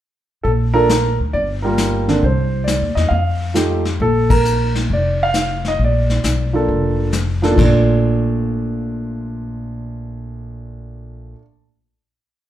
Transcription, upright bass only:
0.45 A#1
1.20 D2
1.34 G1
2.22 C2
2.81 D#2
2.96 E2
3.11 F2
4.00 A#1
4.90 F1
5.79 A#1
6.24 B1
6.69 F1
7.58 A#1

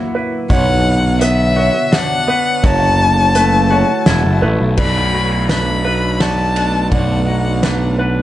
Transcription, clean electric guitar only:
Already playing: A#3 E4 F#4
0.50 B2
1.21 B3
1.56 F#4
1.92 D4
2.28 B3
2.64 F#3
3.36 A3
3.71 F#4
4.06 E4
4.42 A3
4.78 B2
5.14 F#3
5.49 D4
5.85 B4
6.21 F#4
6.56 D4
6.92 B2
7.28 F#3
7.63 D4
7.99 B4

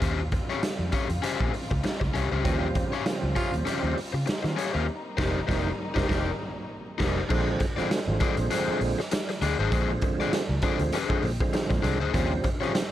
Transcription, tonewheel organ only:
2.44 C#3 F3 G3 C4
3.05 C#3 F3 G3 A#3
3.12 C4
4.44 C4 F4
4.58 C#4 G4
4.75 F4 A#4
5.18 D#3 G3 A#3 C4
5.48 D#3 G3 A#3 C4
5.96 D#3 G3 A#3 C4
6.09 D#3 G3 A#3 C4
6.99 D#3 G3 A#3 D#4
7.30 D3 F3 G#3 C4
7.77 D3 F3 G#3 C4
8.07 D3 F3 G#3 C4
9.72 D3 F3 G#3 C4
10.62 D3 F3 G#3 C4
11.09 D3 F3 G#3 C4
11.40 D3 F3 G#3 C4
12.14 C#3 F3 G3 C4
12.61 C#3 F3 G3 C4

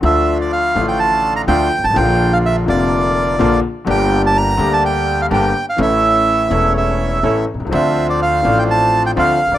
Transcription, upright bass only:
0.03 D2
0.76 A1
1.48 D2
1.79 G1
1.84 G#1
1.91 A1
1.96 A#1
2.68 F1
3.40 A#1
3.87 G1
4.59 D2
5.31 G1
5.78 A1
6.51 E1
7.23 A1
7.54 B1
7.60 C2
7.67 C#2
7.72 D2
8.45 A1
9.17 D2
9.47 C#2
9.52 D2

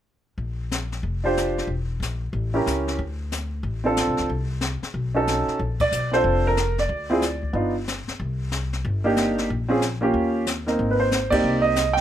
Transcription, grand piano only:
1.24 D4 F4 G4 C5
2.54 C#4 E4 G4 A#4
3.84 C4 D4 F4 A4
5.14 C#4 D#4 F#4 A4
5.81 D5
6.12 C4 D4 F4 A4 C5
6.47 A#4
6.79 D5
7.10 C4 E4 F4 G#4
7.53 B3 D4 D#4 F4
9.04 A#3 D4 D#4 G4
9.68 C4 C#4 F4 G#4
10.01 A#3 C#4 F4 G4
10.67 A#3 C4 D#4 A#4
10.91 B4
11.00 C5
11.30 A#3 C4 D#4 G4 D5
11.62 D#5
11.93 G5

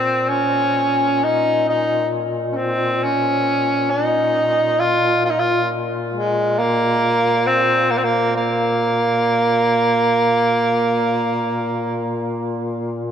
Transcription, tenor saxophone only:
Already playing: C4
0.29 C#4
1.24 D#4
1.69 D#4
2.52 C#4
2.57 C4
3.04 C#4
3.90 D#4
4.80 F4
5.25 F4
5.30 D#4
5.39 F4
6.14 G#3
6.59 A#3
7.47 C4
7.91 A#3
7.97 C4
8.04 A#3
8.36 A#3

